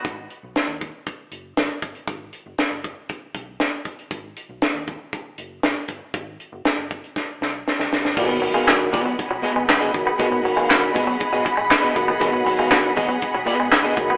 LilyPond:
<<
  \new Staff \with { instrumentName = "String section" } { \time 4/4 \key gis \minor \tempo 4 = 118 r1 | r1 | r1 | r1 |
<gis' dis'' fis'' b''>1~ | <gis' dis'' fis'' b''>1~ | <gis' dis'' fis'' b''>1 | }
  \new Staff \with { instrumentName = "Clean electric guitar" } { \time 4/4 \key gis \minor r1 | r1 | r1 | r1 |
<b fis' gis' dis''>8 r16 <b fis' gis' eis''>16 r8 <b fis' gis' dis''>8 r8 <b fis' gis' dis''>8 r16 <b fis' gis' dis''>8 r16 | <b fis' gis' dis''>8 r16 <b fis' gis' eis''>16 r8 <b fis' gis' dis''>8 r16 <b fis' gis' dis''>8 r8 <b fis' gis' dis''>8 r16 | <b fis' gis' dis''>8 r16 <b fis' gis' eis''>16 r8 <b fis' gis' dis''>8 r8 <b fis' gis' dis''>8 r16 <b fis' gis' dis''>8 r16 | }
  \new Staff \with { instrumentName = "Clean electric guitar" } { \clef bass \time 4/4 \key gis \minor r1 | r1 | r1 | r1 |
r8 fis16 gis16 b16 r8 fis16 r16 fis16 r16 gis16 b16 r8 b16 | r8 fis16 gis16 b16 r8 fis16 r16 fis16 r16 gis16 b16 r8 b16 | r8 fis16 gis16 b16 r8 fis16 r16 fis16 r16 gis16 b16 r8 b16 | }
  \new Staff \with { instrumentName = "Tonewheel organ" } { \clef bass \time 4/4 \key gis \minor r1 | r1 | r1 | r1 |
<b, dis fis a ais>4. r2 <b, dis fis ais>8 | <b, dis fis ais>4. r2 <b, dis fis ais>8 | <b, dis fis ais b>4. r2 <b, dis fis ais>8 | }
  \new Staff \with { instrumentName = "Fingered electric bass" } { \clef bass \time 4/4 \key gis \minor gis,,8 r16 b,,16 r16 dis,8 r8. fis,,8 gis,,16 r16 g,,16 r16 | gis,,8 r16 fis,,16 r16 fis,,8 r8. b,,8 r4 | gis,,8 r16 b,,16 r16 dis,8 r8. fis,,8 gis,,16 r16 g,,16 r16 | gis,,8 r16 fis,,16 r16 fis,,8 r8. b,,8 r16 cis,16 b,,16 g,,16 |
gis,,8. r8. dis,16 r8 b,,16 r16 gis,,16 gis,,8 fis,,16 r16 | gis,,8. r8. fis,,16 r8 gis,,16 r16 gis,,16 r8 b,,16 g,,16 | gis,,8. r8. dis,16 r8 b,,16 r16 gis,,16 gis,,8 fis,,16 r16 | }
  \new DrumStaff \with { instrumentName = "Drums" } \drummode { \time 4/4 <hh bd>8 hh8 <hh sn>8 <hh bd>8 <hh bd>8 hh8 <hh sn>8 <hh bd>16 hh16 | <hh bd>8 hh8 <hh sn>8 <hh bd>8 <hh bd>8 <hh bd>8 <hh sn>8 <hh bd>16 hh16 | <hh bd>8 hh8 <hh sn>8 <hh bd>8 <hh bd>8 hh8 <hh sn>8 <hh bd>8 | <hh bd>8 hh8 <hh sn>8 <hh bd>16 hh16 <bd sn>8 sn8 sn16 sn16 sn16 sn16 |
<cymc bd>8 hho8 <hc hh sn>8 <hho bd>16 hh16 <hh bd>8 hh8 <hc hh sn>8 <hh bd>8 | <hh bd>8 hho8 <hc hh sn>8 <hho bd>8 <hh bd>8 <hh bd>8 <hc hh sn>8 <hh bd>16 hh16 | <hh bd>8 hho8 <hc hh sn>8 <hho bd>16 hh16 <hh bd>8 hh8 <hc hh sn>8 <hh bd>8 | }
>>